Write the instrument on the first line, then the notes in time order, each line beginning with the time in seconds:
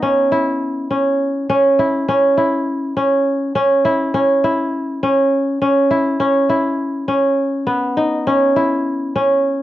kora
Already playing: B3 D#4
0.03 C#4
0.32 E4
0.91 C#4
1.50 C#4
1.79 E4
2.08 C#4
2.37 E4
2.97 C#4
3.55 C#4
3.85 E4
4.14 C#4
4.44 E4
5.03 C#4
5.61 C#4
5.90 E4
6.20 C#4
6.49 E4
7.08 C#4
7.67 B3
7.97 D#4
8.27 C#4
8.56 E4
9.16 C#4